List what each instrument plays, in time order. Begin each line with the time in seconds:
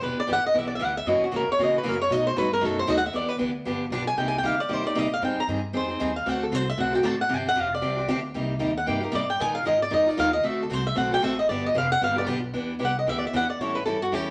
0.01 upright bass E1, steel-string acoustic guitar E3 B3 D4 G4 B4
0.17 steel-string acoustic guitar D5, muted upright bass stroke
0.27 upright bass G1, steel-string acoustic guitar E3 B3 D4 G4
0.33 steel-string acoustic guitar F#5
0.43 steel-string acoustic guitar D#5, muted upright bass stroke
0.54 upright bass B1, steel-string acoustic guitar E3 B3 D4 G4
0.59 steel-string acoustic guitar E5
0.67 steel-string acoustic guitar D5
0.75 steel-string acoustic guitar E5
0.79 upright bass D2, steel-string acoustic guitar E3 B3 D4 G4
0.85 steel-string acoustic guitar F#5
0.97 steel-string acoustic guitar E5
1.06 upright bass F#2, steel-string acoustic guitar C#3 E3 A#3 C#4 F#4 D#5
1.21 steel-string acoustic guitar F#4, muted upright bass stroke
1.31 upright bass G#2, steel-string acoustic guitar C#3 E3 A#3 C#4 F#4
1.36 steel-string acoustic guitar A#4
1.48 muted upright bass stroke
1.52 steel-string acoustic guitar C#5
1.58 upright bass A#2, steel-string acoustic guitar C#3 E3 A#3 C#4 F#4
1.63 steel-string acoustic guitar D#5
1.78 steel-string acoustic guitar B4
1.83 upright bass F#2, steel-string acoustic guitar C#3 E3 A#3 C#4 F#4
1.88 steel-string acoustic guitar A#4
2.02 steel-string acoustic guitar C#5
2.10 steel-string acoustic guitar B2 F#3 A3 D#4 F#4 D#5, upright bass B2
2.27 steel-string acoustic guitar C5
2.36 upright bass G2, steel-string acoustic guitar B2 F#3 A3 D#4 F#4 B4
2.53 steel-string acoustic guitar A#4
2.61 upright bass F#2, steel-string acoustic guitar B2 F#3 A3 D#4 F#4
2.65 steel-string acoustic guitar A4
2.79 steel-string acoustic guitar C5
2.87 upright bass D#2, steel-string acoustic guitar B2 F#3 A3 D#4 F#4 D#5
2.98 steel-string acoustic guitar F#5
3.06 steel-string acoustic guitar E5
3.13 upright bass E2, steel-string acoustic guitar E3 B3 D4 G4 D5
3.29 steel-string acoustic guitar B4
3.38 upright bass D2, steel-string acoustic guitar E3 B3 D4 G4
3.65 upright bass G1, steel-string acoustic guitar D3 F3 B3 D4 G4
3.90 upright bass B1, steel-string acoustic guitar D3 F3 B3 D4 G4
4.07 steel-string acoustic guitar G#5
4.17 upright bass C2, steel-string acoustic guitar C3 G3 A#3 D#4 G4 G5
4.28 steel-string acoustic guitar G#5
4.38 steel-string acoustic guitar G5
4.42 upright bass D2, steel-string acoustic guitar C3 G3 A#3 D#4 G4 F5
4.60 steel-string acoustic guitar D5
4.69 upright bass D#2, steel-string acoustic guitar C3 G3 A#3 D#4 G4
4.73 steel-string acoustic guitar C5
4.83 steel-string acoustic guitar A#3 D#4 G4 D5, muted upright bass stroke
4.95 upright bass A#2, steel-string acoustic guitar C3 G3 A#3 D#4 G4 D#5
5.13 steel-string acoustic guitar F5
5.21 upright bass G#2, steel-string acoustic guitar D#3 G3 C4 D#4 G#4 G5
5.37 steel-string acoustic guitar A#5, muted upright bass stroke
5.47 upright bass G2, steel-string acoustic guitar D#3 G3 C4 D#4 G#4
5.73 upright bass F2, steel-string acoustic guitar D#3 G3 C4 D#4 G#4 C5
5.88 steel-string acoustic guitar C4 D#4 G#4
5.99 upright bass D#2, steel-string acoustic guitar D#3 G3 C4 D#4 G#4
6.16 steel-string acoustic guitar F5
6.26 upright bass D2, steel-string acoustic guitar D3 A3 C4 F#4 A4 F#5
6.43 steel-string acoustic guitar A4
6.51 upright bass C2, steel-string acoustic guitar D3 A3 C4 F#4 A4 C5
6.70 steel-string acoustic guitar E5
6.78 upright bass B1, steel-string acoustic guitar D3 A3 C4 F#4 A4 F#5
6.93 steel-string acoustic guitar C4 F#4 A4 G5
7.03 upright bass A1, steel-string acoustic guitar D3 A3 C4 F#4 A4 A5
7.21 steel-string acoustic guitar F#5
7.29 upright bass G1, steel-string acoustic guitar C3 F3 C4 D4 G4
7.34 steel-string acoustic guitar G5
7.49 steel-string acoustic guitar F#5
7.55 upright bass F1, steel-string acoustic guitar C3 F3 C4 D4 G4
7.60 steel-string acoustic guitar F5
7.75 steel-string acoustic guitar D5
7.81 upright bass C2, steel-string acoustic guitar C3 F3 C4 D4 G4
7.96 steel-string acoustic guitar C4 D4 G4
8.08 upright bass D2, steel-string acoustic guitar C3 F3 C4 D4 G4
8.34 upright bass C2, steel-string acoustic guitar C3 G3 A#3 D#4 G4
8.59 upright bass D#2, steel-string acoustic guitar C3 G3 A#3 D#4 G4
8.77 steel-string acoustic guitar F#5
8.86 upright bass G2, steel-string acoustic guitar C3 G3 A#3 D#4 G4 G5
9.00 steel-string acoustic guitar A#3 D#4 G4 A#4
9.12 upright bass G#2, steel-string acoustic guitar C3 G3 A#3 D#4 G4 D5
9.30 steel-string acoustic guitar G5
9.40 upright bass A#2, steel-string acoustic guitar D#3 G#3 D#4 F4 A#4 G#5
9.55 steel-string acoustic guitar F5
9.65 upright bass G#2, steel-string acoustic guitar D#3 G#3 D#4 F4 A#4 D#5
9.82 steel-string acoustic guitar D5
9.90 upright bass F2, steel-string acoustic guitar D#3 G#3 D#4 F4 A#4 D#5
10.06 steel-string acoustic guitar D#4 F4 A#4 D5
10.17 upright bass D#2, steel-string acoustic guitar D#3 G#3 D#4 F4 A#4 F5
10.33 steel-string acoustic guitar D#5
10.43 upright bass D2, steel-string acoustic guitar D3 A3 C4 F#4 A4 E5
10.63 steel-string acoustic guitar A4
10.70 upright bass C2, steel-string acoustic guitar D3 A3 C4 F#4 A4 C5
10.87 steel-string acoustic guitar E5
10.95 upright bass B1, steel-string acoustic guitar D3 A3 C4 F#4 A4 F#5
11.11 steel-string acoustic guitar C4 F#4 A4 G5
11.22 upright bass A1, steel-string acoustic guitar D3 A3 C4 F#4 A4 E5
11.39 steel-string acoustic guitar D#5
11.49 upright bass G1, steel-string acoustic guitar D3 F3 B3 D4 G4 D5
11.66 steel-string acoustic guitar D#5
11.75 upright bass F1, steel-string acoustic guitar D3 F3 B3 D4 G4 F5
11.92 steel-string acoustic guitar F#5
12.01 upright bass G1, steel-string acoustic guitar D3 F3 B3 D4 G4 F5
12.16 steel-string acoustic guitar B3 D4 G4 D5
12.26 upright bass B1, steel-string acoustic guitar D3 F3 B3 D4 G4
12.53 upright bass E2, steel-string acoustic guitar E3 B3 D4 G4
12.79 upright bass C2, steel-string acoustic guitar E3 B3 D4 G4
12.85 steel-string acoustic guitar F#5
12.99 steel-string acoustic guitar D#5
13.06 upright bass D2, steel-string acoustic guitar E3 B3 D4 G4 E5
13.19 steel-string acoustic guitar D5
13.27 steel-string acoustic guitar E5
13.33 upright bass E2, steel-string acoustic guitar E3 B3 D4 G4 F#5
13.50 steel-string acoustic guitar D5
13.59 upright bass A2, steel-string acoustic guitar E3 G3 C#4 E4 A4 C#5
13.75 steel-string acoustic guitar B4
13.86 upright bass G2, steel-string acoustic guitar E3 G3 C#4 E4 A4
14.02 steel-string acoustic guitar F#4
14.12 upright bass E2, steel-string acoustic guitar E3 G3 C#4 E4 G4 A4